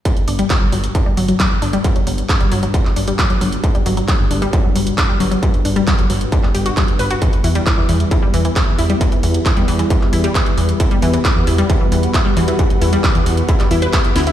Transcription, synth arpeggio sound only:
X:1
M:4/4
L:1/16
Q:1/4=134
K:G
V:1 name="Synth arpeggio sound" clef=bass
F, z D G, F, F, F, z D G, F, F, F, z D G, | F, F, F, z D G, F, F, F, z D G, F, F, F, z | D G, F, F, F, z D G, F, F, F, z D G, F, F, | F, z D G, F, F, F, z D G, G F G, z B F |
E, z E G, E, E, E, z E G, E, E, E, z E G, | E, E, E, z E G, E, E, E, z E G, E, E, E, z | E G, E, E, E, z E G, E, E, E, z E G, E, E, | E, z E G, E, E, E, z E G, E B E z E E |]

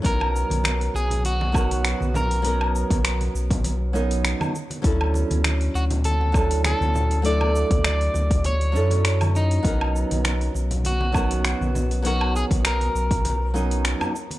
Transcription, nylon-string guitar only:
X:1
M:4/4
L:1/8
Q:"Swing 16ths" 1/4=100
K:B
V:1 name="Nylon-string guitar"
[F,B,CDA]4- [F,B,CDA] [F,B,CDA]3 | [F,B,CDA]4- [F,B,CDA] [F,B,CDA]2 z | [F,C=DE=A]4- [F,CDEA] [F,CDEA]3 | [F,=A,=DE=A]4- [F,A,DEA] [F,CDEA]3 |
[F,B,CDA]4- [F,B,CDA] [F,B,CDA]3 | [F,B,CDA]4- [F,B,CDA] [F,B,CDA]2 z |]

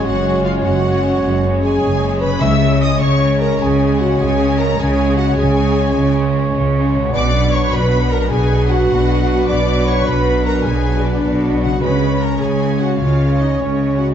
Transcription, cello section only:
X:1
M:12/8
L:1/8
Q:3/8=102
K:C#mix
V:1 name="Cello section" clef=bass
F,,3 F,,3 F,,3 F,,3 | C,3 C,3 C,3 C,3 | C,3 C,3 C,3 C,3 | B,,3 B,,3 B,,3 B,,3 |
B,,3 B,,3 B,,3 B,,3 | C,3 C,3 C,3 C,3 |]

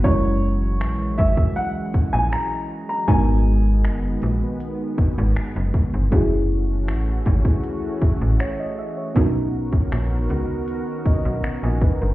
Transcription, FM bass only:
X:1
M:4/4
L:1/16
Q:1/4=79
K:F#mix
V:1 name="FM bass" clef=bass
F,,,4 A,,,2 G,,, z3 A,,, A,,, z4 | G,,,4 F,,,2 A,,, z3 G,,, G,,, F,,, F,,, z =G,,, | F,,,4 =A,,,2 G,,, z3 A,,, A,,, z4 | B,,,4 A,,,2 C,, z3 B,,, B,,, A,,, A,,, z =G,,, |]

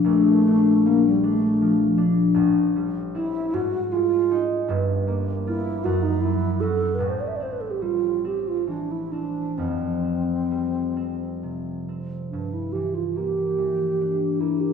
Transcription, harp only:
X:1
M:6/8
L:1/8
Q:3/8=50
K:Gm
V:1 name="Harp" clef=bass
[B,,,B,,F,B,D] D G, D F, D | [K:Gdor] [A,,,A,,] G, [CE] _A,, _A, [_E_A] | [G,,,G,,] B, [B,F] ^F,, ^F, [^C^F] | [A,,,A,,] C G, C E, C |
[F,,,F,,] C G, C C, C | G,, E, B, E, D B, |]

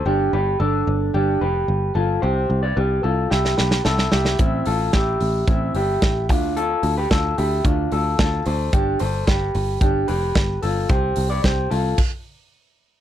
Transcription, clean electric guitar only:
X:1
M:4/4
L:1/16
Q:1/4=111
K:Gmix
V:1 name="Clean electric guitar"
[DG]2 [GB]2 [DA]4 [DG]2 [GB]4 [FA]2 | [Gc]3 [Bd] [GB]2 [FA]2 [EG]2 [GB]2 [EA]2 [EG]2 | [CE]2 [FA]2 [EG]4 [CE]2 [EG]4 [DF]2 | [FA]3 [GB] [FA]2 [EG]2 [DF]2 [FA]2 [FA]2 [Ac]2 |
[DG]2 [Ac]2 [GB]4 [DG]2 [GB]4 [FA]2 | [Gc]3 [Bd] [Gc]2 [FA]2 z8 |]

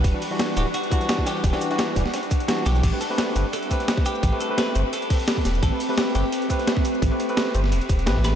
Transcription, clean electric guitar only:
X:1
M:4/4
L:1/8
Q:"Swing 16ths" 1/4=172
K:Ador
V:1 name="Clean electric guitar"
B3 G F3 G- | G4- G z2 G- | G A2 z A2 z G- | G A B2 A4 |
A3 G2 z3 | z6 z B |]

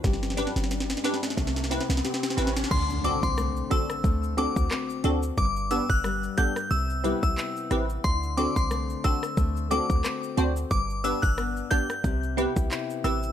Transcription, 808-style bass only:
X:1
M:4/4
L:1/16
Q:"Swing 16ths" 1/4=90
K:Dmix
V:1 name="808-style bass" clef=bass
G,,,3 G,,,3 z2 C,,3 C,, z2 A,,,2 | D,,3 C,,3 z2 D,,3 D,, z2 D,,2 | G,,,3 G,,,3 z2 C,,3 C,, z2 A,,,2 | D,,3 C,,3 z2 D,,3 D,, z2 D,,2 |
G,,,3 G,,,3 z2 C,,3 C,, z2 A,,,2 |]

